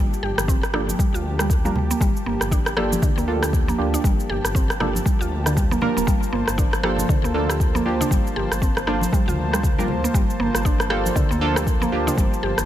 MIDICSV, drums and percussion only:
0, 0, Header, 1, 2, 480
1, 0, Start_track
1, 0, Key_signature, -2, "minor"
1, 0, Tempo, 508475
1, 1896, Time_signature, 4, 2, 24, 8
1, 11944, End_track
2, 0, Start_track
2, 0, Title_t, "Drums"
2, 127, Note_on_c, 9, 69, 39
2, 221, Note_off_c, 9, 69, 0
2, 360, Note_on_c, 9, 37, 88
2, 366, Note_on_c, 9, 69, 74
2, 454, Note_off_c, 9, 37, 0
2, 454, Note_on_c, 9, 36, 118
2, 461, Note_off_c, 9, 69, 0
2, 465, Note_on_c, 9, 69, 66
2, 549, Note_off_c, 9, 36, 0
2, 559, Note_off_c, 9, 69, 0
2, 599, Note_on_c, 9, 37, 93
2, 606, Note_on_c, 9, 69, 41
2, 691, Note_on_c, 9, 63, 65
2, 693, Note_off_c, 9, 37, 0
2, 696, Note_on_c, 9, 37, 78
2, 700, Note_off_c, 9, 69, 0
2, 786, Note_off_c, 9, 63, 0
2, 790, Note_off_c, 9, 37, 0
2, 839, Note_on_c, 9, 63, 97
2, 844, Note_on_c, 9, 69, 78
2, 933, Note_off_c, 9, 63, 0
2, 934, Note_on_c, 9, 36, 122
2, 938, Note_off_c, 9, 69, 0
2, 942, Note_on_c, 9, 69, 66
2, 1029, Note_off_c, 9, 36, 0
2, 1036, Note_off_c, 9, 69, 0
2, 1084, Note_on_c, 9, 69, 41
2, 1178, Note_off_c, 9, 69, 0
2, 1314, Note_on_c, 9, 37, 94
2, 1321, Note_on_c, 9, 69, 81
2, 1409, Note_off_c, 9, 37, 0
2, 1414, Note_on_c, 9, 36, 122
2, 1415, Note_off_c, 9, 69, 0
2, 1420, Note_on_c, 9, 69, 67
2, 1508, Note_off_c, 9, 36, 0
2, 1515, Note_off_c, 9, 69, 0
2, 1552, Note_on_c, 9, 63, 82
2, 1562, Note_on_c, 9, 69, 40
2, 1647, Note_off_c, 9, 63, 0
2, 1656, Note_off_c, 9, 69, 0
2, 1657, Note_on_c, 9, 64, 104
2, 1752, Note_off_c, 9, 64, 0
2, 1802, Note_on_c, 9, 63, 61
2, 1802, Note_on_c, 9, 69, 76
2, 1894, Note_on_c, 9, 36, 123
2, 1896, Note_off_c, 9, 69, 0
2, 1897, Note_off_c, 9, 63, 0
2, 1902, Note_on_c, 9, 69, 71
2, 1989, Note_off_c, 9, 36, 0
2, 1996, Note_off_c, 9, 69, 0
2, 2044, Note_on_c, 9, 69, 39
2, 2138, Note_off_c, 9, 69, 0
2, 2274, Note_on_c, 9, 37, 88
2, 2281, Note_on_c, 9, 69, 76
2, 2369, Note_off_c, 9, 37, 0
2, 2374, Note_on_c, 9, 36, 122
2, 2376, Note_off_c, 9, 69, 0
2, 2380, Note_on_c, 9, 69, 70
2, 2468, Note_off_c, 9, 36, 0
2, 2474, Note_off_c, 9, 69, 0
2, 2514, Note_on_c, 9, 37, 90
2, 2521, Note_on_c, 9, 69, 39
2, 2609, Note_off_c, 9, 37, 0
2, 2612, Note_on_c, 9, 37, 81
2, 2615, Note_on_c, 9, 63, 67
2, 2616, Note_off_c, 9, 69, 0
2, 2707, Note_off_c, 9, 37, 0
2, 2709, Note_off_c, 9, 63, 0
2, 2761, Note_on_c, 9, 63, 110
2, 2763, Note_on_c, 9, 69, 79
2, 2851, Note_on_c, 9, 64, 88
2, 2854, Note_on_c, 9, 36, 123
2, 2855, Note_off_c, 9, 63, 0
2, 2857, Note_off_c, 9, 69, 0
2, 2859, Note_on_c, 9, 69, 68
2, 2945, Note_off_c, 9, 64, 0
2, 2948, Note_off_c, 9, 36, 0
2, 2953, Note_off_c, 9, 69, 0
2, 3002, Note_on_c, 9, 69, 41
2, 3096, Note_off_c, 9, 69, 0
2, 3234, Note_on_c, 9, 37, 91
2, 3241, Note_on_c, 9, 69, 82
2, 3328, Note_off_c, 9, 37, 0
2, 3334, Note_on_c, 9, 36, 123
2, 3335, Note_off_c, 9, 69, 0
2, 3342, Note_on_c, 9, 69, 67
2, 3428, Note_off_c, 9, 36, 0
2, 3436, Note_off_c, 9, 69, 0
2, 3471, Note_on_c, 9, 63, 101
2, 3482, Note_on_c, 9, 69, 41
2, 3566, Note_off_c, 9, 63, 0
2, 3577, Note_off_c, 9, 69, 0
2, 3722, Note_on_c, 9, 69, 79
2, 3814, Note_on_c, 9, 36, 122
2, 3816, Note_off_c, 9, 69, 0
2, 3821, Note_on_c, 9, 69, 69
2, 3909, Note_off_c, 9, 36, 0
2, 3915, Note_off_c, 9, 69, 0
2, 3963, Note_on_c, 9, 69, 38
2, 4058, Note_off_c, 9, 69, 0
2, 4197, Note_on_c, 9, 37, 88
2, 4204, Note_on_c, 9, 69, 76
2, 4292, Note_off_c, 9, 37, 0
2, 4295, Note_on_c, 9, 36, 122
2, 4299, Note_off_c, 9, 69, 0
2, 4304, Note_on_c, 9, 69, 67
2, 4390, Note_off_c, 9, 36, 0
2, 4398, Note_off_c, 9, 69, 0
2, 4438, Note_on_c, 9, 37, 89
2, 4445, Note_on_c, 9, 69, 39
2, 4533, Note_off_c, 9, 37, 0
2, 4534, Note_on_c, 9, 37, 75
2, 4538, Note_on_c, 9, 64, 85
2, 4540, Note_off_c, 9, 69, 0
2, 4544, Note_on_c, 9, 63, 70
2, 4629, Note_off_c, 9, 37, 0
2, 4632, Note_off_c, 9, 64, 0
2, 4638, Note_off_c, 9, 63, 0
2, 4673, Note_on_c, 9, 63, 98
2, 4685, Note_on_c, 9, 69, 76
2, 4767, Note_off_c, 9, 63, 0
2, 4775, Note_on_c, 9, 36, 117
2, 4780, Note_off_c, 9, 69, 0
2, 4780, Note_on_c, 9, 69, 66
2, 4870, Note_off_c, 9, 36, 0
2, 4875, Note_off_c, 9, 69, 0
2, 4924, Note_on_c, 9, 69, 40
2, 5018, Note_off_c, 9, 69, 0
2, 5154, Note_on_c, 9, 37, 88
2, 5161, Note_on_c, 9, 69, 81
2, 5249, Note_off_c, 9, 37, 0
2, 5256, Note_off_c, 9, 69, 0
2, 5256, Note_on_c, 9, 36, 120
2, 5260, Note_on_c, 9, 69, 65
2, 5350, Note_off_c, 9, 36, 0
2, 5355, Note_off_c, 9, 69, 0
2, 5395, Note_on_c, 9, 63, 99
2, 5403, Note_on_c, 9, 69, 41
2, 5488, Note_on_c, 9, 64, 85
2, 5490, Note_off_c, 9, 63, 0
2, 5497, Note_off_c, 9, 69, 0
2, 5583, Note_off_c, 9, 64, 0
2, 5634, Note_on_c, 9, 63, 73
2, 5642, Note_on_c, 9, 69, 79
2, 5728, Note_off_c, 9, 63, 0
2, 5735, Note_on_c, 9, 36, 112
2, 5736, Note_off_c, 9, 69, 0
2, 5737, Note_on_c, 9, 69, 66
2, 5829, Note_off_c, 9, 36, 0
2, 5831, Note_off_c, 9, 69, 0
2, 5880, Note_on_c, 9, 69, 38
2, 5974, Note_off_c, 9, 69, 0
2, 6113, Note_on_c, 9, 37, 85
2, 6120, Note_on_c, 9, 69, 74
2, 6208, Note_off_c, 9, 37, 0
2, 6215, Note_off_c, 9, 69, 0
2, 6215, Note_on_c, 9, 36, 116
2, 6219, Note_on_c, 9, 69, 64
2, 6310, Note_off_c, 9, 36, 0
2, 6313, Note_off_c, 9, 69, 0
2, 6355, Note_on_c, 9, 37, 87
2, 6362, Note_on_c, 9, 69, 38
2, 6449, Note_off_c, 9, 37, 0
2, 6451, Note_on_c, 9, 63, 62
2, 6453, Note_on_c, 9, 37, 76
2, 6456, Note_off_c, 9, 69, 0
2, 6545, Note_off_c, 9, 63, 0
2, 6548, Note_off_c, 9, 37, 0
2, 6593, Note_on_c, 9, 63, 103
2, 6602, Note_on_c, 9, 69, 77
2, 6684, Note_on_c, 9, 64, 82
2, 6687, Note_off_c, 9, 63, 0
2, 6694, Note_on_c, 9, 47, 88
2, 6695, Note_on_c, 9, 36, 116
2, 6696, Note_off_c, 9, 69, 0
2, 6701, Note_on_c, 9, 69, 64
2, 6778, Note_off_c, 9, 64, 0
2, 6789, Note_off_c, 9, 36, 0
2, 6789, Note_off_c, 9, 47, 0
2, 6796, Note_off_c, 9, 69, 0
2, 6843, Note_on_c, 9, 69, 40
2, 6937, Note_off_c, 9, 69, 0
2, 7075, Note_on_c, 9, 37, 84
2, 7082, Note_on_c, 9, 69, 77
2, 7170, Note_off_c, 9, 37, 0
2, 7175, Note_on_c, 9, 36, 116
2, 7177, Note_off_c, 9, 69, 0
2, 7181, Note_on_c, 9, 69, 65
2, 7269, Note_off_c, 9, 36, 0
2, 7276, Note_off_c, 9, 69, 0
2, 7315, Note_on_c, 9, 63, 84
2, 7324, Note_on_c, 9, 69, 39
2, 7409, Note_off_c, 9, 63, 0
2, 7419, Note_off_c, 9, 69, 0
2, 7560, Note_on_c, 9, 47, 82
2, 7567, Note_on_c, 9, 69, 75
2, 7655, Note_off_c, 9, 47, 0
2, 7655, Note_on_c, 9, 36, 113
2, 7662, Note_off_c, 9, 69, 0
2, 7664, Note_on_c, 9, 69, 64
2, 7749, Note_off_c, 9, 36, 0
2, 7758, Note_off_c, 9, 69, 0
2, 7808, Note_on_c, 9, 69, 36
2, 7902, Note_off_c, 9, 69, 0
2, 8039, Note_on_c, 9, 37, 84
2, 8046, Note_on_c, 9, 69, 73
2, 8134, Note_off_c, 9, 37, 0
2, 8135, Note_on_c, 9, 36, 111
2, 8141, Note_off_c, 9, 69, 0
2, 8141, Note_on_c, 9, 69, 63
2, 8229, Note_off_c, 9, 36, 0
2, 8236, Note_off_c, 9, 69, 0
2, 8278, Note_on_c, 9, 37, 86
2, 8285, Note_on_c, 9, 69, 37
2, 8373, Note_off_c, 9, 37, 0
2, 8375, Note_on_c, 9, 63, 62
2, 8376, Note_on_c, 9, 37, 74
2, 8380, Note_off_c, 9, 69, 0
2, 8469, Note_off_c, 9, 63, 0
2, 8471, Note_off_c, 9, 37, 0
2, 8509, Note_on_c, 9, 63, 109
2, 8527, Note_on_c, 9, 69, 71
2, 8604, Note_off_c, 9, 63, 0
2, 8616, Note_on_c, 9, 36, 114
2, 8621, Note_off_c, 9, 69, 0
2, 8625, Note_on_c, 9, 69, 63
2, 8710, Note_off_c, 9, 36, 0
2, 8719, Note_off_c, 9, 69, 0
2, 8761, Note_on_c, 9, 47, 84
2, 8768, Note_on_c, 9, 69, 39
2, 8855, Note_off_c, 9, 47, 0
2, 8862, Note_off_c, 9, 69, 0
2, 9001, Note_on_c, 9, 37, 88
2, 9008, Note_on_c, 9, 69, 73
2, 9095, Note_on_c, 9, 36, 118
2, 9096, Note_off_c, 9, 37, 0
2, 9097, Note_on_c, 9, 47, 86
2, 9103, Note_off_c, 9, 69, 0
2, 9104, Note_on_c, 9, 69, 62
2, 9189, Note_off_c, 9, 36, 0
2, 9191, Note_off_c, 9, 47, 0
2, 9198, Note_off_c, 9, 69, 0
2, 9237, Note_on_c, 9, 63, 84
2, 9248, Note_on_c, 9, 69, 38
2, 9328, Note_on_c, 9, 64, 85
2, 9331, Note_off_c, 9, 63, 0
2, 9343, Note_off_c, 9, 69, 0
2, 9422, Note_off_c, 9, 64, 0
2, 9464, Note_on_c, 9, 63, 58
2, 9486, Note_on_c, 9, 69, 73
2, 9559, Note_off_c, 9, 63, 0
2, 9574, Note_on_c, 9, 36, 114
2, 9580, Note_off_c, 9, 69, 0
2, 9582, Note_on_c, 9, 69, 61
2, 9669, Note_off_c, 9, 36, 0
2, 9676, Note_off_c, 9, 69, 0
2, 9724, Note_on_c, 9, 69, 36
2, 9818, Note_off_c, 9, 69, 0
2, 9956, Note_on_c, 9, 37, 84
2, 9963, Note_on_c, 9, 69, 70
2, 10050, Note_off_c, 9, 37, 0
2, 10054, Note_on_c, 9, 36, 110
2, 10057, Note_off_c, 9, 69, 0
2, 10061, Note_on_c, 9, 69, 64
2, 10148, Note_off_c, 9, 36, 0
2, 10155, Note_off_c, 9, 69, 0
2, 10195, Note_on_c, 9, 37, 90
2, 10202, Note_on_c, 9, 69, 37
2, 10289, Note_off_c, 9, 37, 0
2, 10290, Note_on_c, 9, 63, 66
2, 10291, Note_on_c, 9, 37, 75
2, 10296, Note_off_c, 9, 69, 0
2, 10385, Note_off_c, 9, 37, 0
2, 10385, Note_off_c, 9, 63, 0
2, 10433, Note_on_c, 9, 63, 88
2, 10442, Note_on_c, 9, 69, 70
2, 10527, Note_off_c, 9, 63, 0
2, 10531, Note_on_c, 9, 47, 84
2, 10534, Note_on_c, 9, 36, 109
2, 10536, Note_off_c, 9, 69, 0
2, 10536, Note_on_c, 9, 64, 89
2, 10538, Note_on_c, 9, 69, 63
2, 10626, Note_off_c, 9, 47, 0
2, 10628, Note_off_c, 9, 36, 0
2, 10630, Note_off_c, 9, 64, 0
2, 10633, Note_off_c, 9, 69, 0
2, 10682, Note_on_c, 9, 69, 39
2, 10776, Note_off_c, 9, 69, 0
2, 10916, Note_on_c, 9, 37, 90
2, 10922, Note_on_c, 9, 69, 72
2, 11010, Note_off_c, 9, 37, 0
2, 11014, Note_on_c, 9, 36, 113
2, 11017, Note_off_c, 9, 69, 0
2, 11019, Note_on_c, 9, 69, 59
2, 11108, Note_off_c, 9, 36, 0
2, 11114, Note_off_c, 9, 69, 0
2, 11157, Note_on_c, 9, 63, 85
2, 11162, Note_on_c, 9, 69, 38
2, 11251, Note_off_c, 9, 63, 0
2, 11257, Note_off_c, 9, 69, 0
2, 11396, Note_on_c, 9, 47, 77
2, 11403, Note_on_c, 9, 69, 72
2, 11490, Note_off_c, 9, 47, 0
2, 11493, Note_on_c, 9, 36, 110
2, 11497, Note_off_c, 9, 69, 0
2, 11499, Note_on_c, 9, 69, 63
2, 11588, Note_off_c, 9, 36, 0
2, 11594, Note_off_c, 9, 69, 0
2, 11644, Note_on_c, 9, 69, 37
2, 11738, Note_off_c, 9, 69, 0
2, 11874, Note_on_c, 9, 37, 89
2, 11881, Note_on_c, 9, 69, 73
2, 11944, Note_off_c, 9, 37, 0
2, 11944, Note_off_c, 9, 69, 0
2, 11944, End_track
0, 0, End_of_file